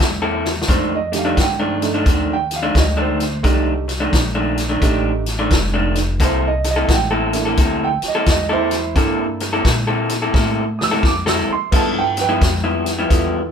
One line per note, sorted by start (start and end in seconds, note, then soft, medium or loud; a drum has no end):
0.00 0.66 E2 medium
0.00 kick medium
0.00 snare loud
0.00 closed hi-hat medium
0.22 0.48 C3 medium
0.22 0.48 A#3 medium
0.22 0.48 E4 medium
0.22 0.48 A4 medium
0.46 snare medium
0.62 snare medium
0.68 0.97 F2 medium
0.68 1.35 F2 medium
0.68 0.97 D#3 medium
0.68 0.98 A3 medium
0.68 0.98 D4 medium
0.68 0.92 C5 medium
0.68 kick medium
0.68 snare soft
0.68 closed hi-hat medium
0.95 1.16 D#5 medium
1.12 1.34 A3 medium
1.12 1.35 D4 medium
1.12 1.35 D#4 medium
1.12 1.35 G4 medium
1.12 muted clean electric guitar stroke soft
1.12 snare soft
1.12 closed hi-hat medium
1.18 1.39 F5 medium
1.25 1.44 F2 medium
1.25 1.44 D#3 medium
1.25 1.44 A3 medium
1.25 1.44 D4 medium
1.36 2.04 G2 medium
1.36 1.41 F#5 medium
1.36 kick medium
1.36 snare loud
1.36 closed hi-hat medium
1.41 2.28 G5 medium
1.60 1.86 F2 medium
1.60 1.86 D#3 medium
1.60 1.86 A3 medium
1.60 1.85 D4 loud
1.81 2.03 A3 medium
1.81 2.04 D4 medium
1.81 2.04 D#4 medium
1.81 2.04 A4 medium
1.81 snare soft
1.81 closed hi-hat medium
1.94 2.05 F2 medium
1.94 2.06 D#3 medium
1.94 2.06 A3 medium
1.94 2.06 D4 medium
2.06 2.73 D#2 medium
2.06 2.35 F2 medium
2.06 2.35 D#3 medium
2.06 2.36 A3 medium
2.06 2.36 D4 medium
2.06 kick medium
2.06 snare soft
2.06 closed hi-hat medium
2.33 2.54 G5 medium
2.51 snare soft
2.51 closed hi-hat medium
2.56 2.76 F5 medium
2.63 2.82 F2 medium
2.63 2.82 D#3 medium
2.63 2.82 A3 medium
2.63 2.82 D4 loud
2.75 3.42 D2 medium
2.75 2.99 D#5 medium
2.75 kick medium
2.75 snare loud
2.75 closed hi-hat medium
2.97 3.23 F2 medium
2.97 3.23 D#3 medium
2.97 3.23 A3 medium
2.97 3.23 D4 medium
3.02 3.67 C5 medium
3.20 snare soft
3.20 closed hi-hat medium
3.43 4.11 C2 medium
3.43 3.73 F2 medium
3.43 3.73 D#3 medium
3.43 3.83 A3 medium
3.43 3.73 A3 medium
3.43 3.84 D4 medium
3.43 3.73 D4 medium
3.43 3.84 D#4 medium
3.43 3.84 G4 medium
3.43 kick medium
3.43 snare soft
3.43 closed hi-hat medium
3.88 muted clean electric guitar stroke soft
3.88 snare soft
3.88 closed hi-hat medium
4.00 4.20 F2 medium
4.00 4.20 D#3 medium
4.00 4.20 A3 medium
4.00 4.19 D4 medium
4.13 4.80 A#1 medium
4.13 kick medium
4.13 snare loud
4.13 closed hi-hat medium
4.35 4.61 F2 medium
4.35 4.61 D#3 medium
4.35 4.61 A3 medium
4.35 4.61 D4 medium
4.57 snare soft
4.57 closed hi-hat medium
4.69 4.81 F2 medium
4.69 4.81 D#3 medium
4.69 4.82 A3 medium
4.69 4.82 D4 medium
4.81 5.49 A1 medium
4.81 5.11 F2 medium
4.81 5.11 D#3 medium
4.81 5.21 A3 medium
4.81 5.11 A3 medium
4.81 5.22 D4 medium
4.81 5.11 D4 loud
4.81 5.22 D#4 medium
4.81 5.22 G4 medium
4.81 kick medium
4.81 snare soft
4.81 closed hi-hat medium
5.26 snare soft
5.26 closed hi-hat medium
5.39 5.58 F2 medium
5.39 5.58 D#3 medium
5.39 5.58 A3 loud
5.39 5.58 D4 loud
5.51 6.18 F1 medium
5.51 kick medium
5.51 snare loud
5.51 closed hi-hat medium
5.74 6.00 F2 medium
5.74 6.00 D#3 medium
5.74 5.99 A3 medium
5.74 5.99 D4 medium
5.95 snare soft
5.95 closed hi-hat medium
6.20 6.87 C2 medium
6.20 6.49 C3 medium
6.20 6.49 A#3 medium
6.20 6.49 E4 medium
6.20 6.50 A4 medium
6.20 kick medium
6.20 snare soft
6.20 closed hi-hat medium
6.24 6.45 C5 loud
6.48 6.68 D#5 medium
6.64 muted clean electric guitar stroke soft
6.64 snare soft
6.64 closed hi-hat medium
6.71 6.91 D#5 medium
6.76 6.96 C3 medium
6.76 6.96 A#3 medium
6.76 6.96 E4 medium
6.76 6.95 A4 medium
6.88 7.56 A1 medium
6.88 6.93 F#5 medium
6.88 kick medium
6.88 snare loud
6.88 closed hi-hat medium
6.93 7.81 G5 medium
7.11 7.38 C3 medium
7.11 7.37 A#3 medium
7.11 7.37 E4 loud
7.11 7.37 A4 medium
7.32 7.55 A#3 medium
7.32 7.55 D4 medium
7.32 7.56 E4 medium
7.32 7.56 A4 medium
7.32 snare soft
7.32 closed hi-hat medium
7.45 7.57 C3 medium
7.45 7.57 A#3 medium
7.45 7.58 E4 medium
7.45 7.58 A4 medium
7.57 7.99 D2 medium
7.57 7.87 C3 medium
7.57 7.87 A#3 medium
7.57 7.88 E4 medium
7.57 7.88 A4 medium
7.57 kick medium
7.57 snare soft
7.57 closed hi-hat medium
7.84 8.05 G5 medium
8.02 muted upright bass stroke soft
8.02 snare soft
8.02 closed hi-hat medium
8.08 8.29 D#5 medium
8.15 8.34 C3 medium
8.15 8.34 A#3 medium
8.15 8.34 E4 medium
8.15 8.34 A4 loud
8.26 8.94 E2 medium
8.26 kick medium
8.26 snare loud
8.26 closed hi-hat medium
8.31 8.51 D#5 medium
8.49 8.76 C3 medium
8.49 8.76 A#3 medium
8.49 8.75 E4 medium
8.49 8.94 E4 medium
8.49 8.75 A4 medium
8.49 9.19 C5 loud
8.71 snare soft
8.71 closed hi-hat medium
8.95 9.63 G2 medium
8.95 9.25 C3 medium
8.95 10.00 A#3 medium
8.95 9.25 A#3 medium
8.95 10.00 D4 medium
8.95 10.01 E4 medium
8.95 9.25 E4 medium
8.95 10.01 A4 medium
8.95 9.26 A4 medium
8.95 kick medium
8.95 snare soft
8.95 closed hi-hat medium
9.40 muted clean electric guitar stroke soft
9.40 snare soft
9.40 closed hi-hat medium
9.53 9.72 C3 medium
9.53 9.72 A#3 medium
9.53 9.72 E4 medium
9.53 9.72 A4 medium
9.65 10.32 A#2 medium
9.65 kick medium
9.65 snare loud
9.65 closed hi-hat medium
9.87 10.14 C3 medium
9.87 10.14 A#3 medium
9.87 10.14 E4 medium
9.87 10.13 A4 medium
10.09 snare soft
10.09 closed hi-hat medium
10.22 10.33 C3 medium
10.22 10.34 A#3 medium
10.22 10.34 E4 medium
10.22 10.34 A4 medium
10.34 11.02 A2 medium
10.34 10.63 C3 medium
10.34 10.64 A#3 medium
10.34 10.64 E4 medium
10.34 10.64 A4 medium
10.34 kick medium
10.34 snare medium
10.79 10.84 D#6 medium
10.79 snare medium
10.83 11.04 E6 loud
10.91 11.11 C3 medium
10.91 11.11 A#3 medium
10.91 11.11 E4 medium
10.91 11.10 A4 medium
11.03 11.45 F2 medium
11.03 11.28 D6 medium
11.03 kick medium
11.03 snare medium
11.26 11.53 C3 medium
11.26 11.52 A#3 medium
11.26 11.52 E4 medium
11.26 11.52 A4 medium
11.26 11.50 E6 medium
11.26 snare medium
11.48 muted upright bass stroke soft
11.53 11.74 C6 medium
11.71 12.01 G2 medium
11.71 12.40 G2 medium
11.71 12.02 F3 medium
11.71 12.12 B3 medium
11.71 12.02 B3 medium
11.71 12.12 E4 medium
11.71 12.02 E4 medium
11.71 12.13 F4 medium
11.71 12.13 A4 medium
11.71 kick medium
11.71 snare soft
11.71 closed hi-hat medium
11.71 crash medium
11.76 11.97 A5 medium
11.99 12.20 G5 medium
12.17 muted clean electric guitar stroke soft
12.17 snare soft
12.17 closed hi-hat medium
12.21 13.52 B4 medium
12.21 13.52 G5 loud
12.29 12.49 G2 medium
12.29 12.49 F3 medium
12.29 12.49 B3 medium
12.29 12.48 E4 medium
12.41 13.09 F2 medium
12.41 kick medium
12.41 snare loud
12.41 closed hi-hat medium
12.64 12.90 G2 medium
12.64 12.90 F3 medium
12.64 12.90 B3 medium
12.64 12.90 E4 medium
12.86 snare soft
12.86 closed hi-hat medium
12.98 13.09 G2 medium
12.98 13.10 F3 medium
12.98 13.10 B3 medium
12.98 13.10 E4 medium
13.09 13.52 E2 medium
13.09 13.40 G2 medium
13.09 13.40 F3 medium
13.09 13.50 B3 medium
13.09 13.40 B3 medium
13.09 13.50 E4 medium
13.09 13.40 E4 medium
13.09 13.51 F4 medium
13.09 13.51 A4 medium
13.09 kick medium
13.09 snare soft
13.09 closed hi-hat medium